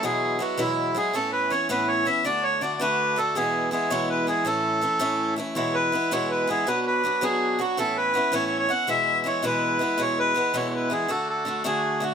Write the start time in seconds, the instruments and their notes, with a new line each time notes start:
0.03 steel-string acoustic guitar E2 B2 F#3 G#3 B3 E4, accordion G#4
0.39 steel-string acoustic guitar F#3 G#3 B3 E4, accordion F#4
0.58 steel-string acoustic guitar E2 B2 F#3 G#3 B3 E4, accordion E4
0.95 steel-string acoustic guitar F#3 G#3 B3 E4, accordion G#4
1.14 steel-string acoustic guitar A2 E3 B3 C#4 E4, accordion A4
1.32 accordion B4
1.50 steel-string acoustic guitar E3 B3 C#4 E4, accordion C#5
1.69 steel-string acoustic guitar A2 E3 B3 C#4 E4, accordion B4
1.88 accordion C#5
2.05 steel-string acoustic guitar E3 B3 C#4 E4, accordion E5
2.25 steel-string acoustic guitar D3 A3 D4 F#4, accordion D5
2.43 accordion C#5
2.61 steel-string acoustic guitar D3 A3 D4 F#4, accordion D5
2.80 steel-string acoustic guitar D3 A3 D4 F#4, accordion B4
3.16 steel-string acoustic guitar D3 A3 D4 F#4, accordion A4
3.35 steel-string acoustic guitar E2 B2 E3 G#3 B3 E4, accordion G#4
3.71 steel-string acoustic guitar E3 G#3 B3 E4, accordion G#4
3.90 steel-string acoustic guitar E2 B2 E3 G#3 B3 E4, accordion C#5
4.09 accordion B4
4.27 steel-string acoustic guitar E3 G#3 B3 E4, accordion G#4
4.45 steel-string acoustic guitar A2 E3 A3 C#4 E4, accordion A4
4.81 steel-string acoustic guitar E3 A3 C#4 E4
4.99 steel-string acoustic guitar A2 E3 A3 C#4 E4
5.36 steel-string acoustic guitar E3 A3 C#4 E4
5.55 steel-string acoustic guitar E2 B2 E3 G#3 B3 E4, accordion C#5
5.74 accordion B4
5.92 steel-string acoustic guitar E3 G#3 B3 E4
6.11 steel-string acoustic guitar E2 B2 E3 G#3 B3 E4, accordion C#5
6.30 accordion B4
6.47 steel-string acoustic guitar E3 G#3 B3 E4, accordion G#4
6.67 steel-string acoustic guitar B2 F#3 B3 D4 F#4, accordion B4
6.87 accordion B4
7.04 steel-string acoustic guitar F#3 B3 D4 F#4
7.21 steel-string acoustic guitar B2 F#3 B3 D4 F#4, accordion G#4
7.59 steel-string acoustic guitar F#3 B3 D4 F#4, accordion F#4
7.77 steel-string acoustic guitar A2 E3 B3 C#4 E4, accordion A4
7.97 accordion B4
8.14 steel-string acoustic guitar E3 B3 C#4 E4
8.32 steel-string acoustic guitar A2 E3 B3 C#4 E4, accordion C#5
8.46 accordion C#5
8.59 accordion C#5
8.69 steel-string acoustic guitar E3 B3 C#4 E4, accordion F#5
8.87 steel-string acoustic guitar E2 B2 E3 G#3 B3 E4, accordion E5
9.24 steel-string acoustic guitar E3 G#3 B3 E4, accordion C#5
9.42 steel-string acoustic guitar E2 B2 E3 G#3 B3 E4, accordion B4
9.79 steel-string acoustic guitar E3 G#3 B3 E4
9.98 steel-string acoustic guitar E2 B2 E3 G#3 B3 E4, accordion C#5
10.19 accordion B4
10.34 steel-string acoustic guitar E3 G#3 B3 E4
10.54 steel-string acoustic guitar E2 B2 E3 G#3 B3 E4, accordion C#5
10.70 accordion C#5
10.75 accordion B4
10.90 steel-string acoustic guitar E3 G#3 B3 E4, accordion G#4
11.08 steel-string acoustic guitar D3 A3 D4 F#4, accordion A4
11.29 accordion A4
11.45 steel-string acoustic guitar D3 A3 D4 F#4
11.64 steel-string acoustic guitar D3 A3 D4 F#4, accordion G#4
12.00 steel-string acoustic guitar D3 A3 D4 F#4, accordion F#4